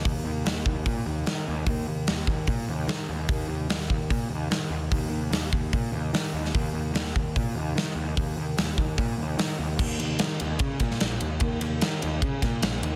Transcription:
0.05 D#2, kick, open hi-hat
0.25 D#2
0.45 D#2, snare, open hi-hat
0.66 D#2, kick
0.86 A#2, kick, open hi-hat
1.05 D#2
1.26 D#3, snare, open hi-hat
1.48 D#2
1.66 D#2, kick, open hi-hat
1.88 D#2
2.07 D#2, snare, open hi-hat
2.27 D#2, kick
2.47 A#2, kick, open hi-hat
2.68 D#2
2.88 D#3, snare, open hi-hat
3.09 D#2
3.29 D#2, kick, open hi-hat
3.48 D#2
3.69 D#2, snare, open hi-hat
3.80 snare
3.90 D#2, kick
4.10 A#2, kick, open hi-hat
4.29 D#2
4.50 D#3, snare, open hi-hat
4.70 D#2
4.92 D#2, kick, open hi-hat
5.10 D#2
5.31 D#2, snare, open hi-hat
5.53 D#2, kick
5.73 A#2, kick, open hi-hat
5.92 D#2
6.13 D#3, snare, open hi-hat
6.33 D#2
6.45 snare
6.55 D#2, kick, open hi-hat
6.74 D#2
6.93 D#2, snare, open hi-hat
7.07 snare
7.16 D#2, kick
7.36 A#2, kick, open hi-hat
7.54 D#2
7.75 D#3, snare, open hi-hat
7.95 D#2
8.17 D#2, kick, open hi-hat
8.37 D#2
8.58 D#2, snare, open hi-hat
8.78 D#2, kick
8.98 A#2, kick, open hi-hat
9.17 D#2
9.37 D#3, snare, open hi-hat
9.59 D#2
9.79 D#2, kick, crash
9.99 D#2, ride
10.19 D#3, snare, ride
10.40 D#2, ride
10.59 C#3, kick, ride
10.80 A#2, kick, ride
10.91 snare
11.00 A#1, snare, ride
11.21 D#2, ride
11.40 D#2, kick, ride
11.61 D#2, ride
11.81 D#3, snare, ride
12.02 D#2, ride
12.22 C#3, kick, ride
12.42 A#2, kick, snare, ride
12.62 A#1, snare, ride
12.82 D#2, ride

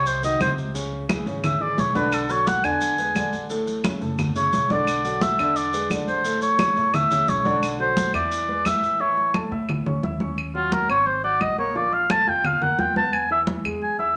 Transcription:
Already playing: C2 C3 C4 C5
0.06 C5, high conga, maracas
0.23 D#3 D#4 F#4 D#5, high conga, maracas
0.40 C#2 C3 C4 C5, high conga, claves, maracas
0.58 high conga, maracas
0.74 C#3 C#4 C#5, high conga, maracas
0.92 high conga
1.09 E3 E4 G#4, high conga, claves, maracas
1.26 G#1 C#3 C#4 C#5, high conga, maracas
1.44 E5, high conga, low conga, claves, maracas
1.60 E3 E4 G#4 D5, high conga
1.77 B1 E3 E4 G#4 C#5, high conga, maracas
1.95 D3 D4 B4 D5, high conga, maracas
2.12 A4, high conga, claves, maracas
2.29 F#3 F#4 A4 C#5, high conga, maracas
2.47 F#5, high conga, maracas
2.63 E2 D3 D4 D5 G#5, high conga, claves, maracas
2.81 high conga, maracas
2.98 G#3 G#4 B4, high conga, maracas
3.15 A1 D3 D4 D5, high conga, claves, maracas
3.33 high conga, maracas
3.50 A2 A3 A4, high conga, maracas
3.67 high conga, maracas
3.84 C#3 C#4 E4, high conga, claves, maracas
4.01 F#1 A2 A3 A4, high conga, maracas
4.18 high conga, low conga, claves, maracas
4.35 C#3 C#4 E4 C#5, high conga, maracas
4.53 B1 C#3 C#4 E4, high conga, maracas
4.70 D3 D4 D5, high conga, maracas
4.87 high conga, claves, maracas
5.04 F#3 F#4 A4, high conga, maracas
5.21 E5, high conga, maracas
5.39 E2 D3 D4 D5, high conga, claves, maracas
5.56 D5, high conga, maracas
5.73 G#3 G#4 B4, high conga, maracas
5.90 A1 D3 D4 D5, high conga, claves, maracas
6.08 C5, high conga, maracas
6.25 A2 A3 A4, high conga, maracas
6.42 C#5, high conga, maracas
6.59 C#3 C#4 E4, high conga, claves, maracas
6.76 A2 A3 A4, high conga, maracas
6.94 E5, high conga, low conga, claves, maracas
7.11 C#3 C#4 E4, high conga, low conga, maracas
7.28 B1 C#3 C#4 E4 C#5, high conga, maracas
7.45 D3 D4 D5, high conga, maracas
7.63 high conga, claves, maracas
7.79 F#3 F#4 A4 C5, high conga
7.97 high conga, maracas
8.13 E2 E3 E4 D5 E5, high conga, claves, maracas
8.31 high conga, maracas
8.48 G#3 G#4 B4, high conga
8.65 A1 E3 E4 E5, high conga, claves, maracas
8.83 high conga, maracas
9.00 E3 E4 C#5 E5, high conga
9.17 high conga
9.34 A3 A4 A5, high conga, claves
9.51 A2 E4 E5 E6, high conga
9.69 high conga, low conga, claves
9.86 C#4 C#5 C#6, high conga, low conga
10.03 D#2 E4 E5 E6, high conga
10.20 C#4 C#5 C#6, high conga
10.38 high conga, claves
10.55 F#3 F4 F#4 F#5, high conga
10.72 A#4, high conga
10.89 G#1 C4 C5 C#5 C6, high conga, claves
11.06 C5, high conga
11.24 F#4 D5 F#5 F#6, high conga
11.41 A#1 D#5, high conga, claves
11.58 A#3 A#4 C#5 A#5, high conga
11.75 F3 F4 D5 F5, high conga
11.93 F5, high conga
12.10 A3 A4 A5, high conga, claves
12.27 F2 F4 F5 G5 F6, high conga
12.44 F5, high conga, low conga, claves
12.61 A#3 A#4 F#5 A#5, high conga, low conga
12.78 E2 F4 F5 G5 F6, high conga
12.96 B3 B4 A5 B5, high conga
13.13 G#5, high conga, claves
13.30 E3 E4 E5, high conga
13.47 high conga
13.64 E2 G#3 G#4 G#5, high conga, claves
13.82 G#5, high conga
13.99 E4 E5 E6, high conga

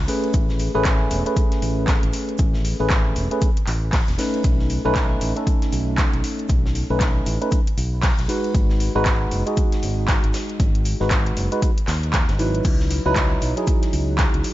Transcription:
0.08 A3 C#4 G#4 B4, open hi-hat, shaker
0.24 closed hi-hat
0.33 A1, kick, closed hi-hat, shaker
0.49 snare
0.59 open hi-hat, shaker
0.74 A1 A3 C#4 G#4 B4
0.85 kick, snare, clap, closed hi-hat, shaker
1.11 E1, open hi-hat, shaker
1.25 A3 C#4 G#4 B4, closed hi-hat
1.36 kick, closed hi-hat, shaker
1.52 snare, closed hi-hat
1.62 A1, open hi-hat, shaker
1.87 kick, snare, clap, closed hi-hat, shaker
2.03 A1, closed hi-hat
2.13 open hi-hat, shaker
2.29 closed hi-hat
2.38 A1, kick, closed hi-hat, shaker
2.54 snare
2.65 open hi-hat, shaker
2.80 A1 A3 C#4 G#4 B4
2.90 kick, snare, clap, closed hi-hat, shaker
3.16 E1, open hi-hat, shaker
3.31 A3 C#4 G#4 B4, closed hi-hat
3.42 kick, closed hi-hat, shaker
3.57 closed hi-hat
3.67 A1, clap, open hi-hat, shaker
3.93 kick, snare, clap, closed hi-hat, open hi-hat
4.08 E1, snare, closed hi-hat
4.18 A3 C#4 D#4 B4, snare, open hi-hat, shaker
4.34 closed hi-hat
4.44 B1, kick, closed hi-hat, shaker
4.59 snare
4.70 open hi-hat, shaker
4.85 B1 A3 C#4 D#4 B4
4.95 kick, snare, clap, closed hi-hat, shaker
5.21 A1, open hi-hat, shaker
5.36 A3 C#4 D#4 A4, closed hi-hat
5.47 kick, closed hi-hat, shaker
5.62 snare, closed hi-hat
5.72 B1, open hi-hat, shaker
5.98 kick, snare, clap, closed hi-hat, shaker
6.13 B1, closed hi-hat
6.24 open hi-hat, shaker
6.39 closed hi-hat
6.49 B1, kick, closed hi-hat, shaker
6.66 snare
6.75 open hi-hat, shaker
6.90 B1 A3 C#4 D#4 B4
7.00 kick, snare, clap, closed hi-hat, shaker
7.26 A1, open hi-hat, shaker
7.41 A3 C#4 D#4 B4, closed hi-hat
7.52 kick, closed hi-hat, shaker
7.67 closed hi-hat
7.77 B1, open hi-hat, shaker
8.02 kick, snare, clap, closed hi-hat, open hi-hat
8.18 B1, snare, closed hi-hat
8.28 G#3 D#4 F#4 B4, open hi-hat, shaker
8.44 closed hi-hat
8.54 G#1, kick, closed hi-hat, shaker
8.70 snare
8.80 open hi-hat, shaker
8.95 G#1 G#3 D#4 F#4 B4
9.05 kick, snare, clap, closed hi-hat, shaker
9.31 F#1, open hi-hat, shaker
9.46 G#3 D#4 F#4 G#4, closed hi-hat
9.57 kick, closed hi-hat, shaker
9.72 snare, closed hi-hat
9.83 G#1, open hi-hat, shaker
10.08 kick, snare, clap, closed hi-hat, shaker
10.24 G#1, closed hi-hat
10.34 snare, open hi-hat, shaker
10.49 closed hi-hat
10.60 G#1, kick, closed hi-hat, shaker
10.75 closed hi-hat
10.85 open hi-hat, shaker
11.00 G#1 G#3 D#4 F#4 B4, snare
11.10 kick, snare, clap, closed hi-hat, shaker
11.26 closed hi-hat
11.37 F#1, open hi-hat, shaker
11.52 G#3 D#4 F#4 B4, closed hi-hat
11.62 kick, closed hi-hat, shaker
11.78 closed hi-hat
11.87 D#2, snare, clap, open hi-hat, shaker
12.03 closed hi-hat
12.13 kick, snare, clap, closed hi-hat, shaker
12.28 G#1, snare, closed hi-hat
12.39 F#3 D#4 E4 B4, open hi-hat, shaker
12.55 closed hi-hat
12.64 C#2, kick, closed hi-hat, crash, shaker
12.80 snare
12.90 open hi-hat, shaker
13.05 C#2 F#3 D#4 E4 B4
13.16 kick, snare, clap, closed hi-hat, shaker
13.42 B1, open hi-hat, shaker
13.56 F#3 D#4 E4 G#4, closed hi-hat
13.67 kick, closed hi-hat, shaker
13.82 snare, closed hi-hat
13.93 C#2, open hi-hat, shaker
14.18 kick, snare, clap, closed hi-hat, shaker
14.34 C#2, closed hi-hat
14.44 open hi-hat, shaker

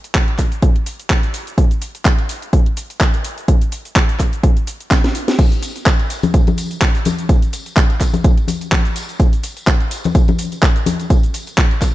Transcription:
0.04 closed hi-hat, cabasa
0.15 kick, clap, closed hi-hat, cabasa
0.28 closed hi-hat
0.39 kick, clap, open hi-hat, cabasa
0.52 closed hi-hat, cabasa
0.62 kick, closed hi-hat, cabasa
0.76 closed hi-hat
0.86 open hi-hat, cabasa
1.00 closed hi-hat, cabasa
1.10 kick, clap, closed hi-hat, cabasa
1.23 closed hi-hat, cabasa
1.34 open hi-hat, cabasa
1.47 closed hi-hat, cabasa
1.58 kick, closed hi-hat, cabasa
1.71 closed hi-hat, cabasa
1.82 open hi-hat, cabasa
1.95 closed hi-hat, cabasa
2.05 kick, clap, closed hi-hat, cabasa
2.19 closed hi-hat
2.29 open hi-hat, cabasa
2.42 closed hi-hat, cabasa
2.53 kick, closed hi-hat, cabasa
2.66 closed hi-hat
2.77 open hi-hat, cabasa
2.90 closed hi-hat, cabasa
3.01 kick, clap, closed hi-hat, cabasa
3.14 closed hi-hat, cabasa
3.24 open hi-hat, cabasa
3.38 closed hi-hat, cabasa
3.48 kick, closed hi-hat, cabasa
3.61 closed hi-hat, cabasa
3.72 open hi-hat, cabasa
3.85 closed hi-hat, cabasa
3.96 kick, clap, closed hi-hat, cabasa
4.09 closed hi-hat, cabasa
4.20 kick, clap, open hi-hat, cabasa
4.33 closed hi-hat, cabasa
4.43 kick, closed hi-hat, cabasa
4.57 closed hi-hat, cabasa
4.67 open hi-hat, cabasa
4.80 closed hi-hat, cabasa
4.91 kick, snare, clap, closed hi-hat, cabasa
5.04 snare, closed hi-hat, cabasa
5.15 open hi-hat, cabasa
5.28 snare, closed hi-hat, cabasa
5.39 kick, closed hi-hat, crash, tambourine, cabasa
5.52 closed hi-hat, tambourine, cabasa
5.62 open hi-hat, tambourine, cabasa
5.76 closed hi-hat, tambourine, cabasa
5.86 kick, clap, closed hi-hat, tambourine, cabasa
6.00 closed hi-hat, tambourine
6.10 open hi-hat, tambourine, cabasa
6.23 closed hi-hat, tambourine, high conga, cabasa
6.34 kick, closed hi-hat, tambourine, cabasa
6.47 closed hi-hat, tambourine, high conga
6.58 open hi-hat, tambourine, cabasa
6.71 closed hi-hat, tambourine, cabasa
6.82 kick, clap, closed hi-hat, cabasa
6.95 closed hi-hat, tambourine, cabasa
7.05 open hi-hat, tambourine, high conga, cabasa
7.19 closed hi-hat, tambourine, cabasa
7.29 kick, closed hi-hat, tambourine, cabasa
7.42 closed hi-hat, tambourine, cabasa
7.53 open hi-hat, tambourine, cabasa
7.66 closed hi-hat, tambourine, cabasa
7.77 kick, clap, closed hi-hat, tambourine, cabasa
7.90 closed hi-hat, tambourine
8.01 kick, clap, open hi-hat, tambourine, cabasa
8.14 closed hi-hat, tambourine, high conga, cabasa
8.24 kick, closed hi-hat, tambourine, cabasa
8.37 closed hi-hat, tambourine
8.48 open hi-hat, tambourine, high conga, cabasa
8.61 closed hi-hat, tambourine, cabasa
8.72 kick, clap, closed hi-hat, tambourine, high conga, cabasa
8.85 closed hi-hat, tambourine, cabasa
8.96 open hi-hat, tambourine, cabasa
9.09 closed hi-hat, tambourine, cabasa
9.19 kick, closed hi-hat, tambourine, cabasa
9.33 closed hi-hat, tambourine, cabasa
9.43 open hi-hat, tambourine, cabasa
9.57 closed hi-hat, tambourine, cabasa
9.67 kick, clap, closed hi-hat, tambourine, cabasa
9.80 closed hi-hat, tambourine
9.91 open hi-hat, tambourine, cabasa
10.04 closed hi-hat, tambourine, high conga, cabasa
10.15 kick, closed hi-hat, tambourine, cabasa
10.28 closed hi-hat, tambourine, high conga
10.38 open hi-hat, tambourine, cabasa
10.52 closed hi-hat, tambourine, cabasa
10.62 kick, clap, closed hi-hat, tambourine, cabasa
10.76 closed hi-hat, tambourine, cabasa
10.86 open hi-hat, tambourine, high conga, cabasa
10.99 closed hi-hat, tambourine, cabasa
11.10 kick, closed hi-hat, tambourine, cabasa
11.23 closed hi-hat, tambourine, cabasa
11.34 open hi-hat, tambourine, cabasa
11.47 closed hi-hat, tambourine, cabasa
11.58 kick, clap, closed hi-hat, tambourine, cabasa
11.71 closed hi-hat, tambourine
11.81 kick, clap, open hi-hat, tambourine, cabasa

